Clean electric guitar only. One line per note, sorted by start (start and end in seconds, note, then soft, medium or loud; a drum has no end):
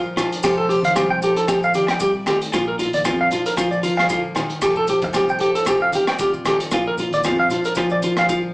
0.17 0.27 F4 medium
0.44 0.53 G4 medium
0.58 0.66 A4 medium
0.69 0.79 G4 medium
0.85 0.92 F5 medium
0.95 1.05 G4 medium
1.10 1.18 G5 medium
1.24 1.32 G4 medium
1.37 1.45 A4 medium
1.48 1.58 G4 medium
1.64 1.71 F5 medium
1.75 1.84 G4 medium
1.91 1.98 G5 medium
2.02 2.11 G4 medium
2.28 2.37 G4 medium
2.54 2.63 F4 medium
2.68 2.75 A#4 medium
2.79 2.88 F4 medium
2.94 3.02 D5 medium
3.06 3.15 F4 medium
3.21 3.28 F5 medium
3.33 3.41 F4 medium
3.46 3.54 A#4 medium
3.58 3.67 F4 loud
3.71 3.79 D5 medium
3.83 3.93 F4 medium
3.97 4.05 F5 medium
4.10 4.19 F4 medium
4.37 muted clean electric guitar stroke medium
4.63 4.72 G4 medium
4.77 4.84 A4 medium
4.90 4.98 G4 medium
5.04 muted clean electric guitar stroke medium
5.16 5.25 G4 medium
5.30 5.37 G5 medium
5.41 5.50 G4 medium
5.55 5.63 A4 medium
5.68 5.77 G4 medium
5.82 5.89 F5 medium
5.95 6.04 G4 medium
6.08 6.16 G5 medium
6.21 6.29 G4 medium
6.47 6.56 G4 medium
6.74 6.82 F4 medium
6.88 6.95 A#4 medium
7.00 7.08 F4 medium
7.14 7.21 D5 medium
7.26 7.35 F4 medium
7.39 7.47 F5 medium
7.51 7.60 F4 medium
7.65 7.73 A#4 medium
7.77 7.86 F4 medium
7.92 7.99 D5 medium
8.04 8.13 F4 medium
8.19 8.26 F5 medium
8.30 8.39 F4 medium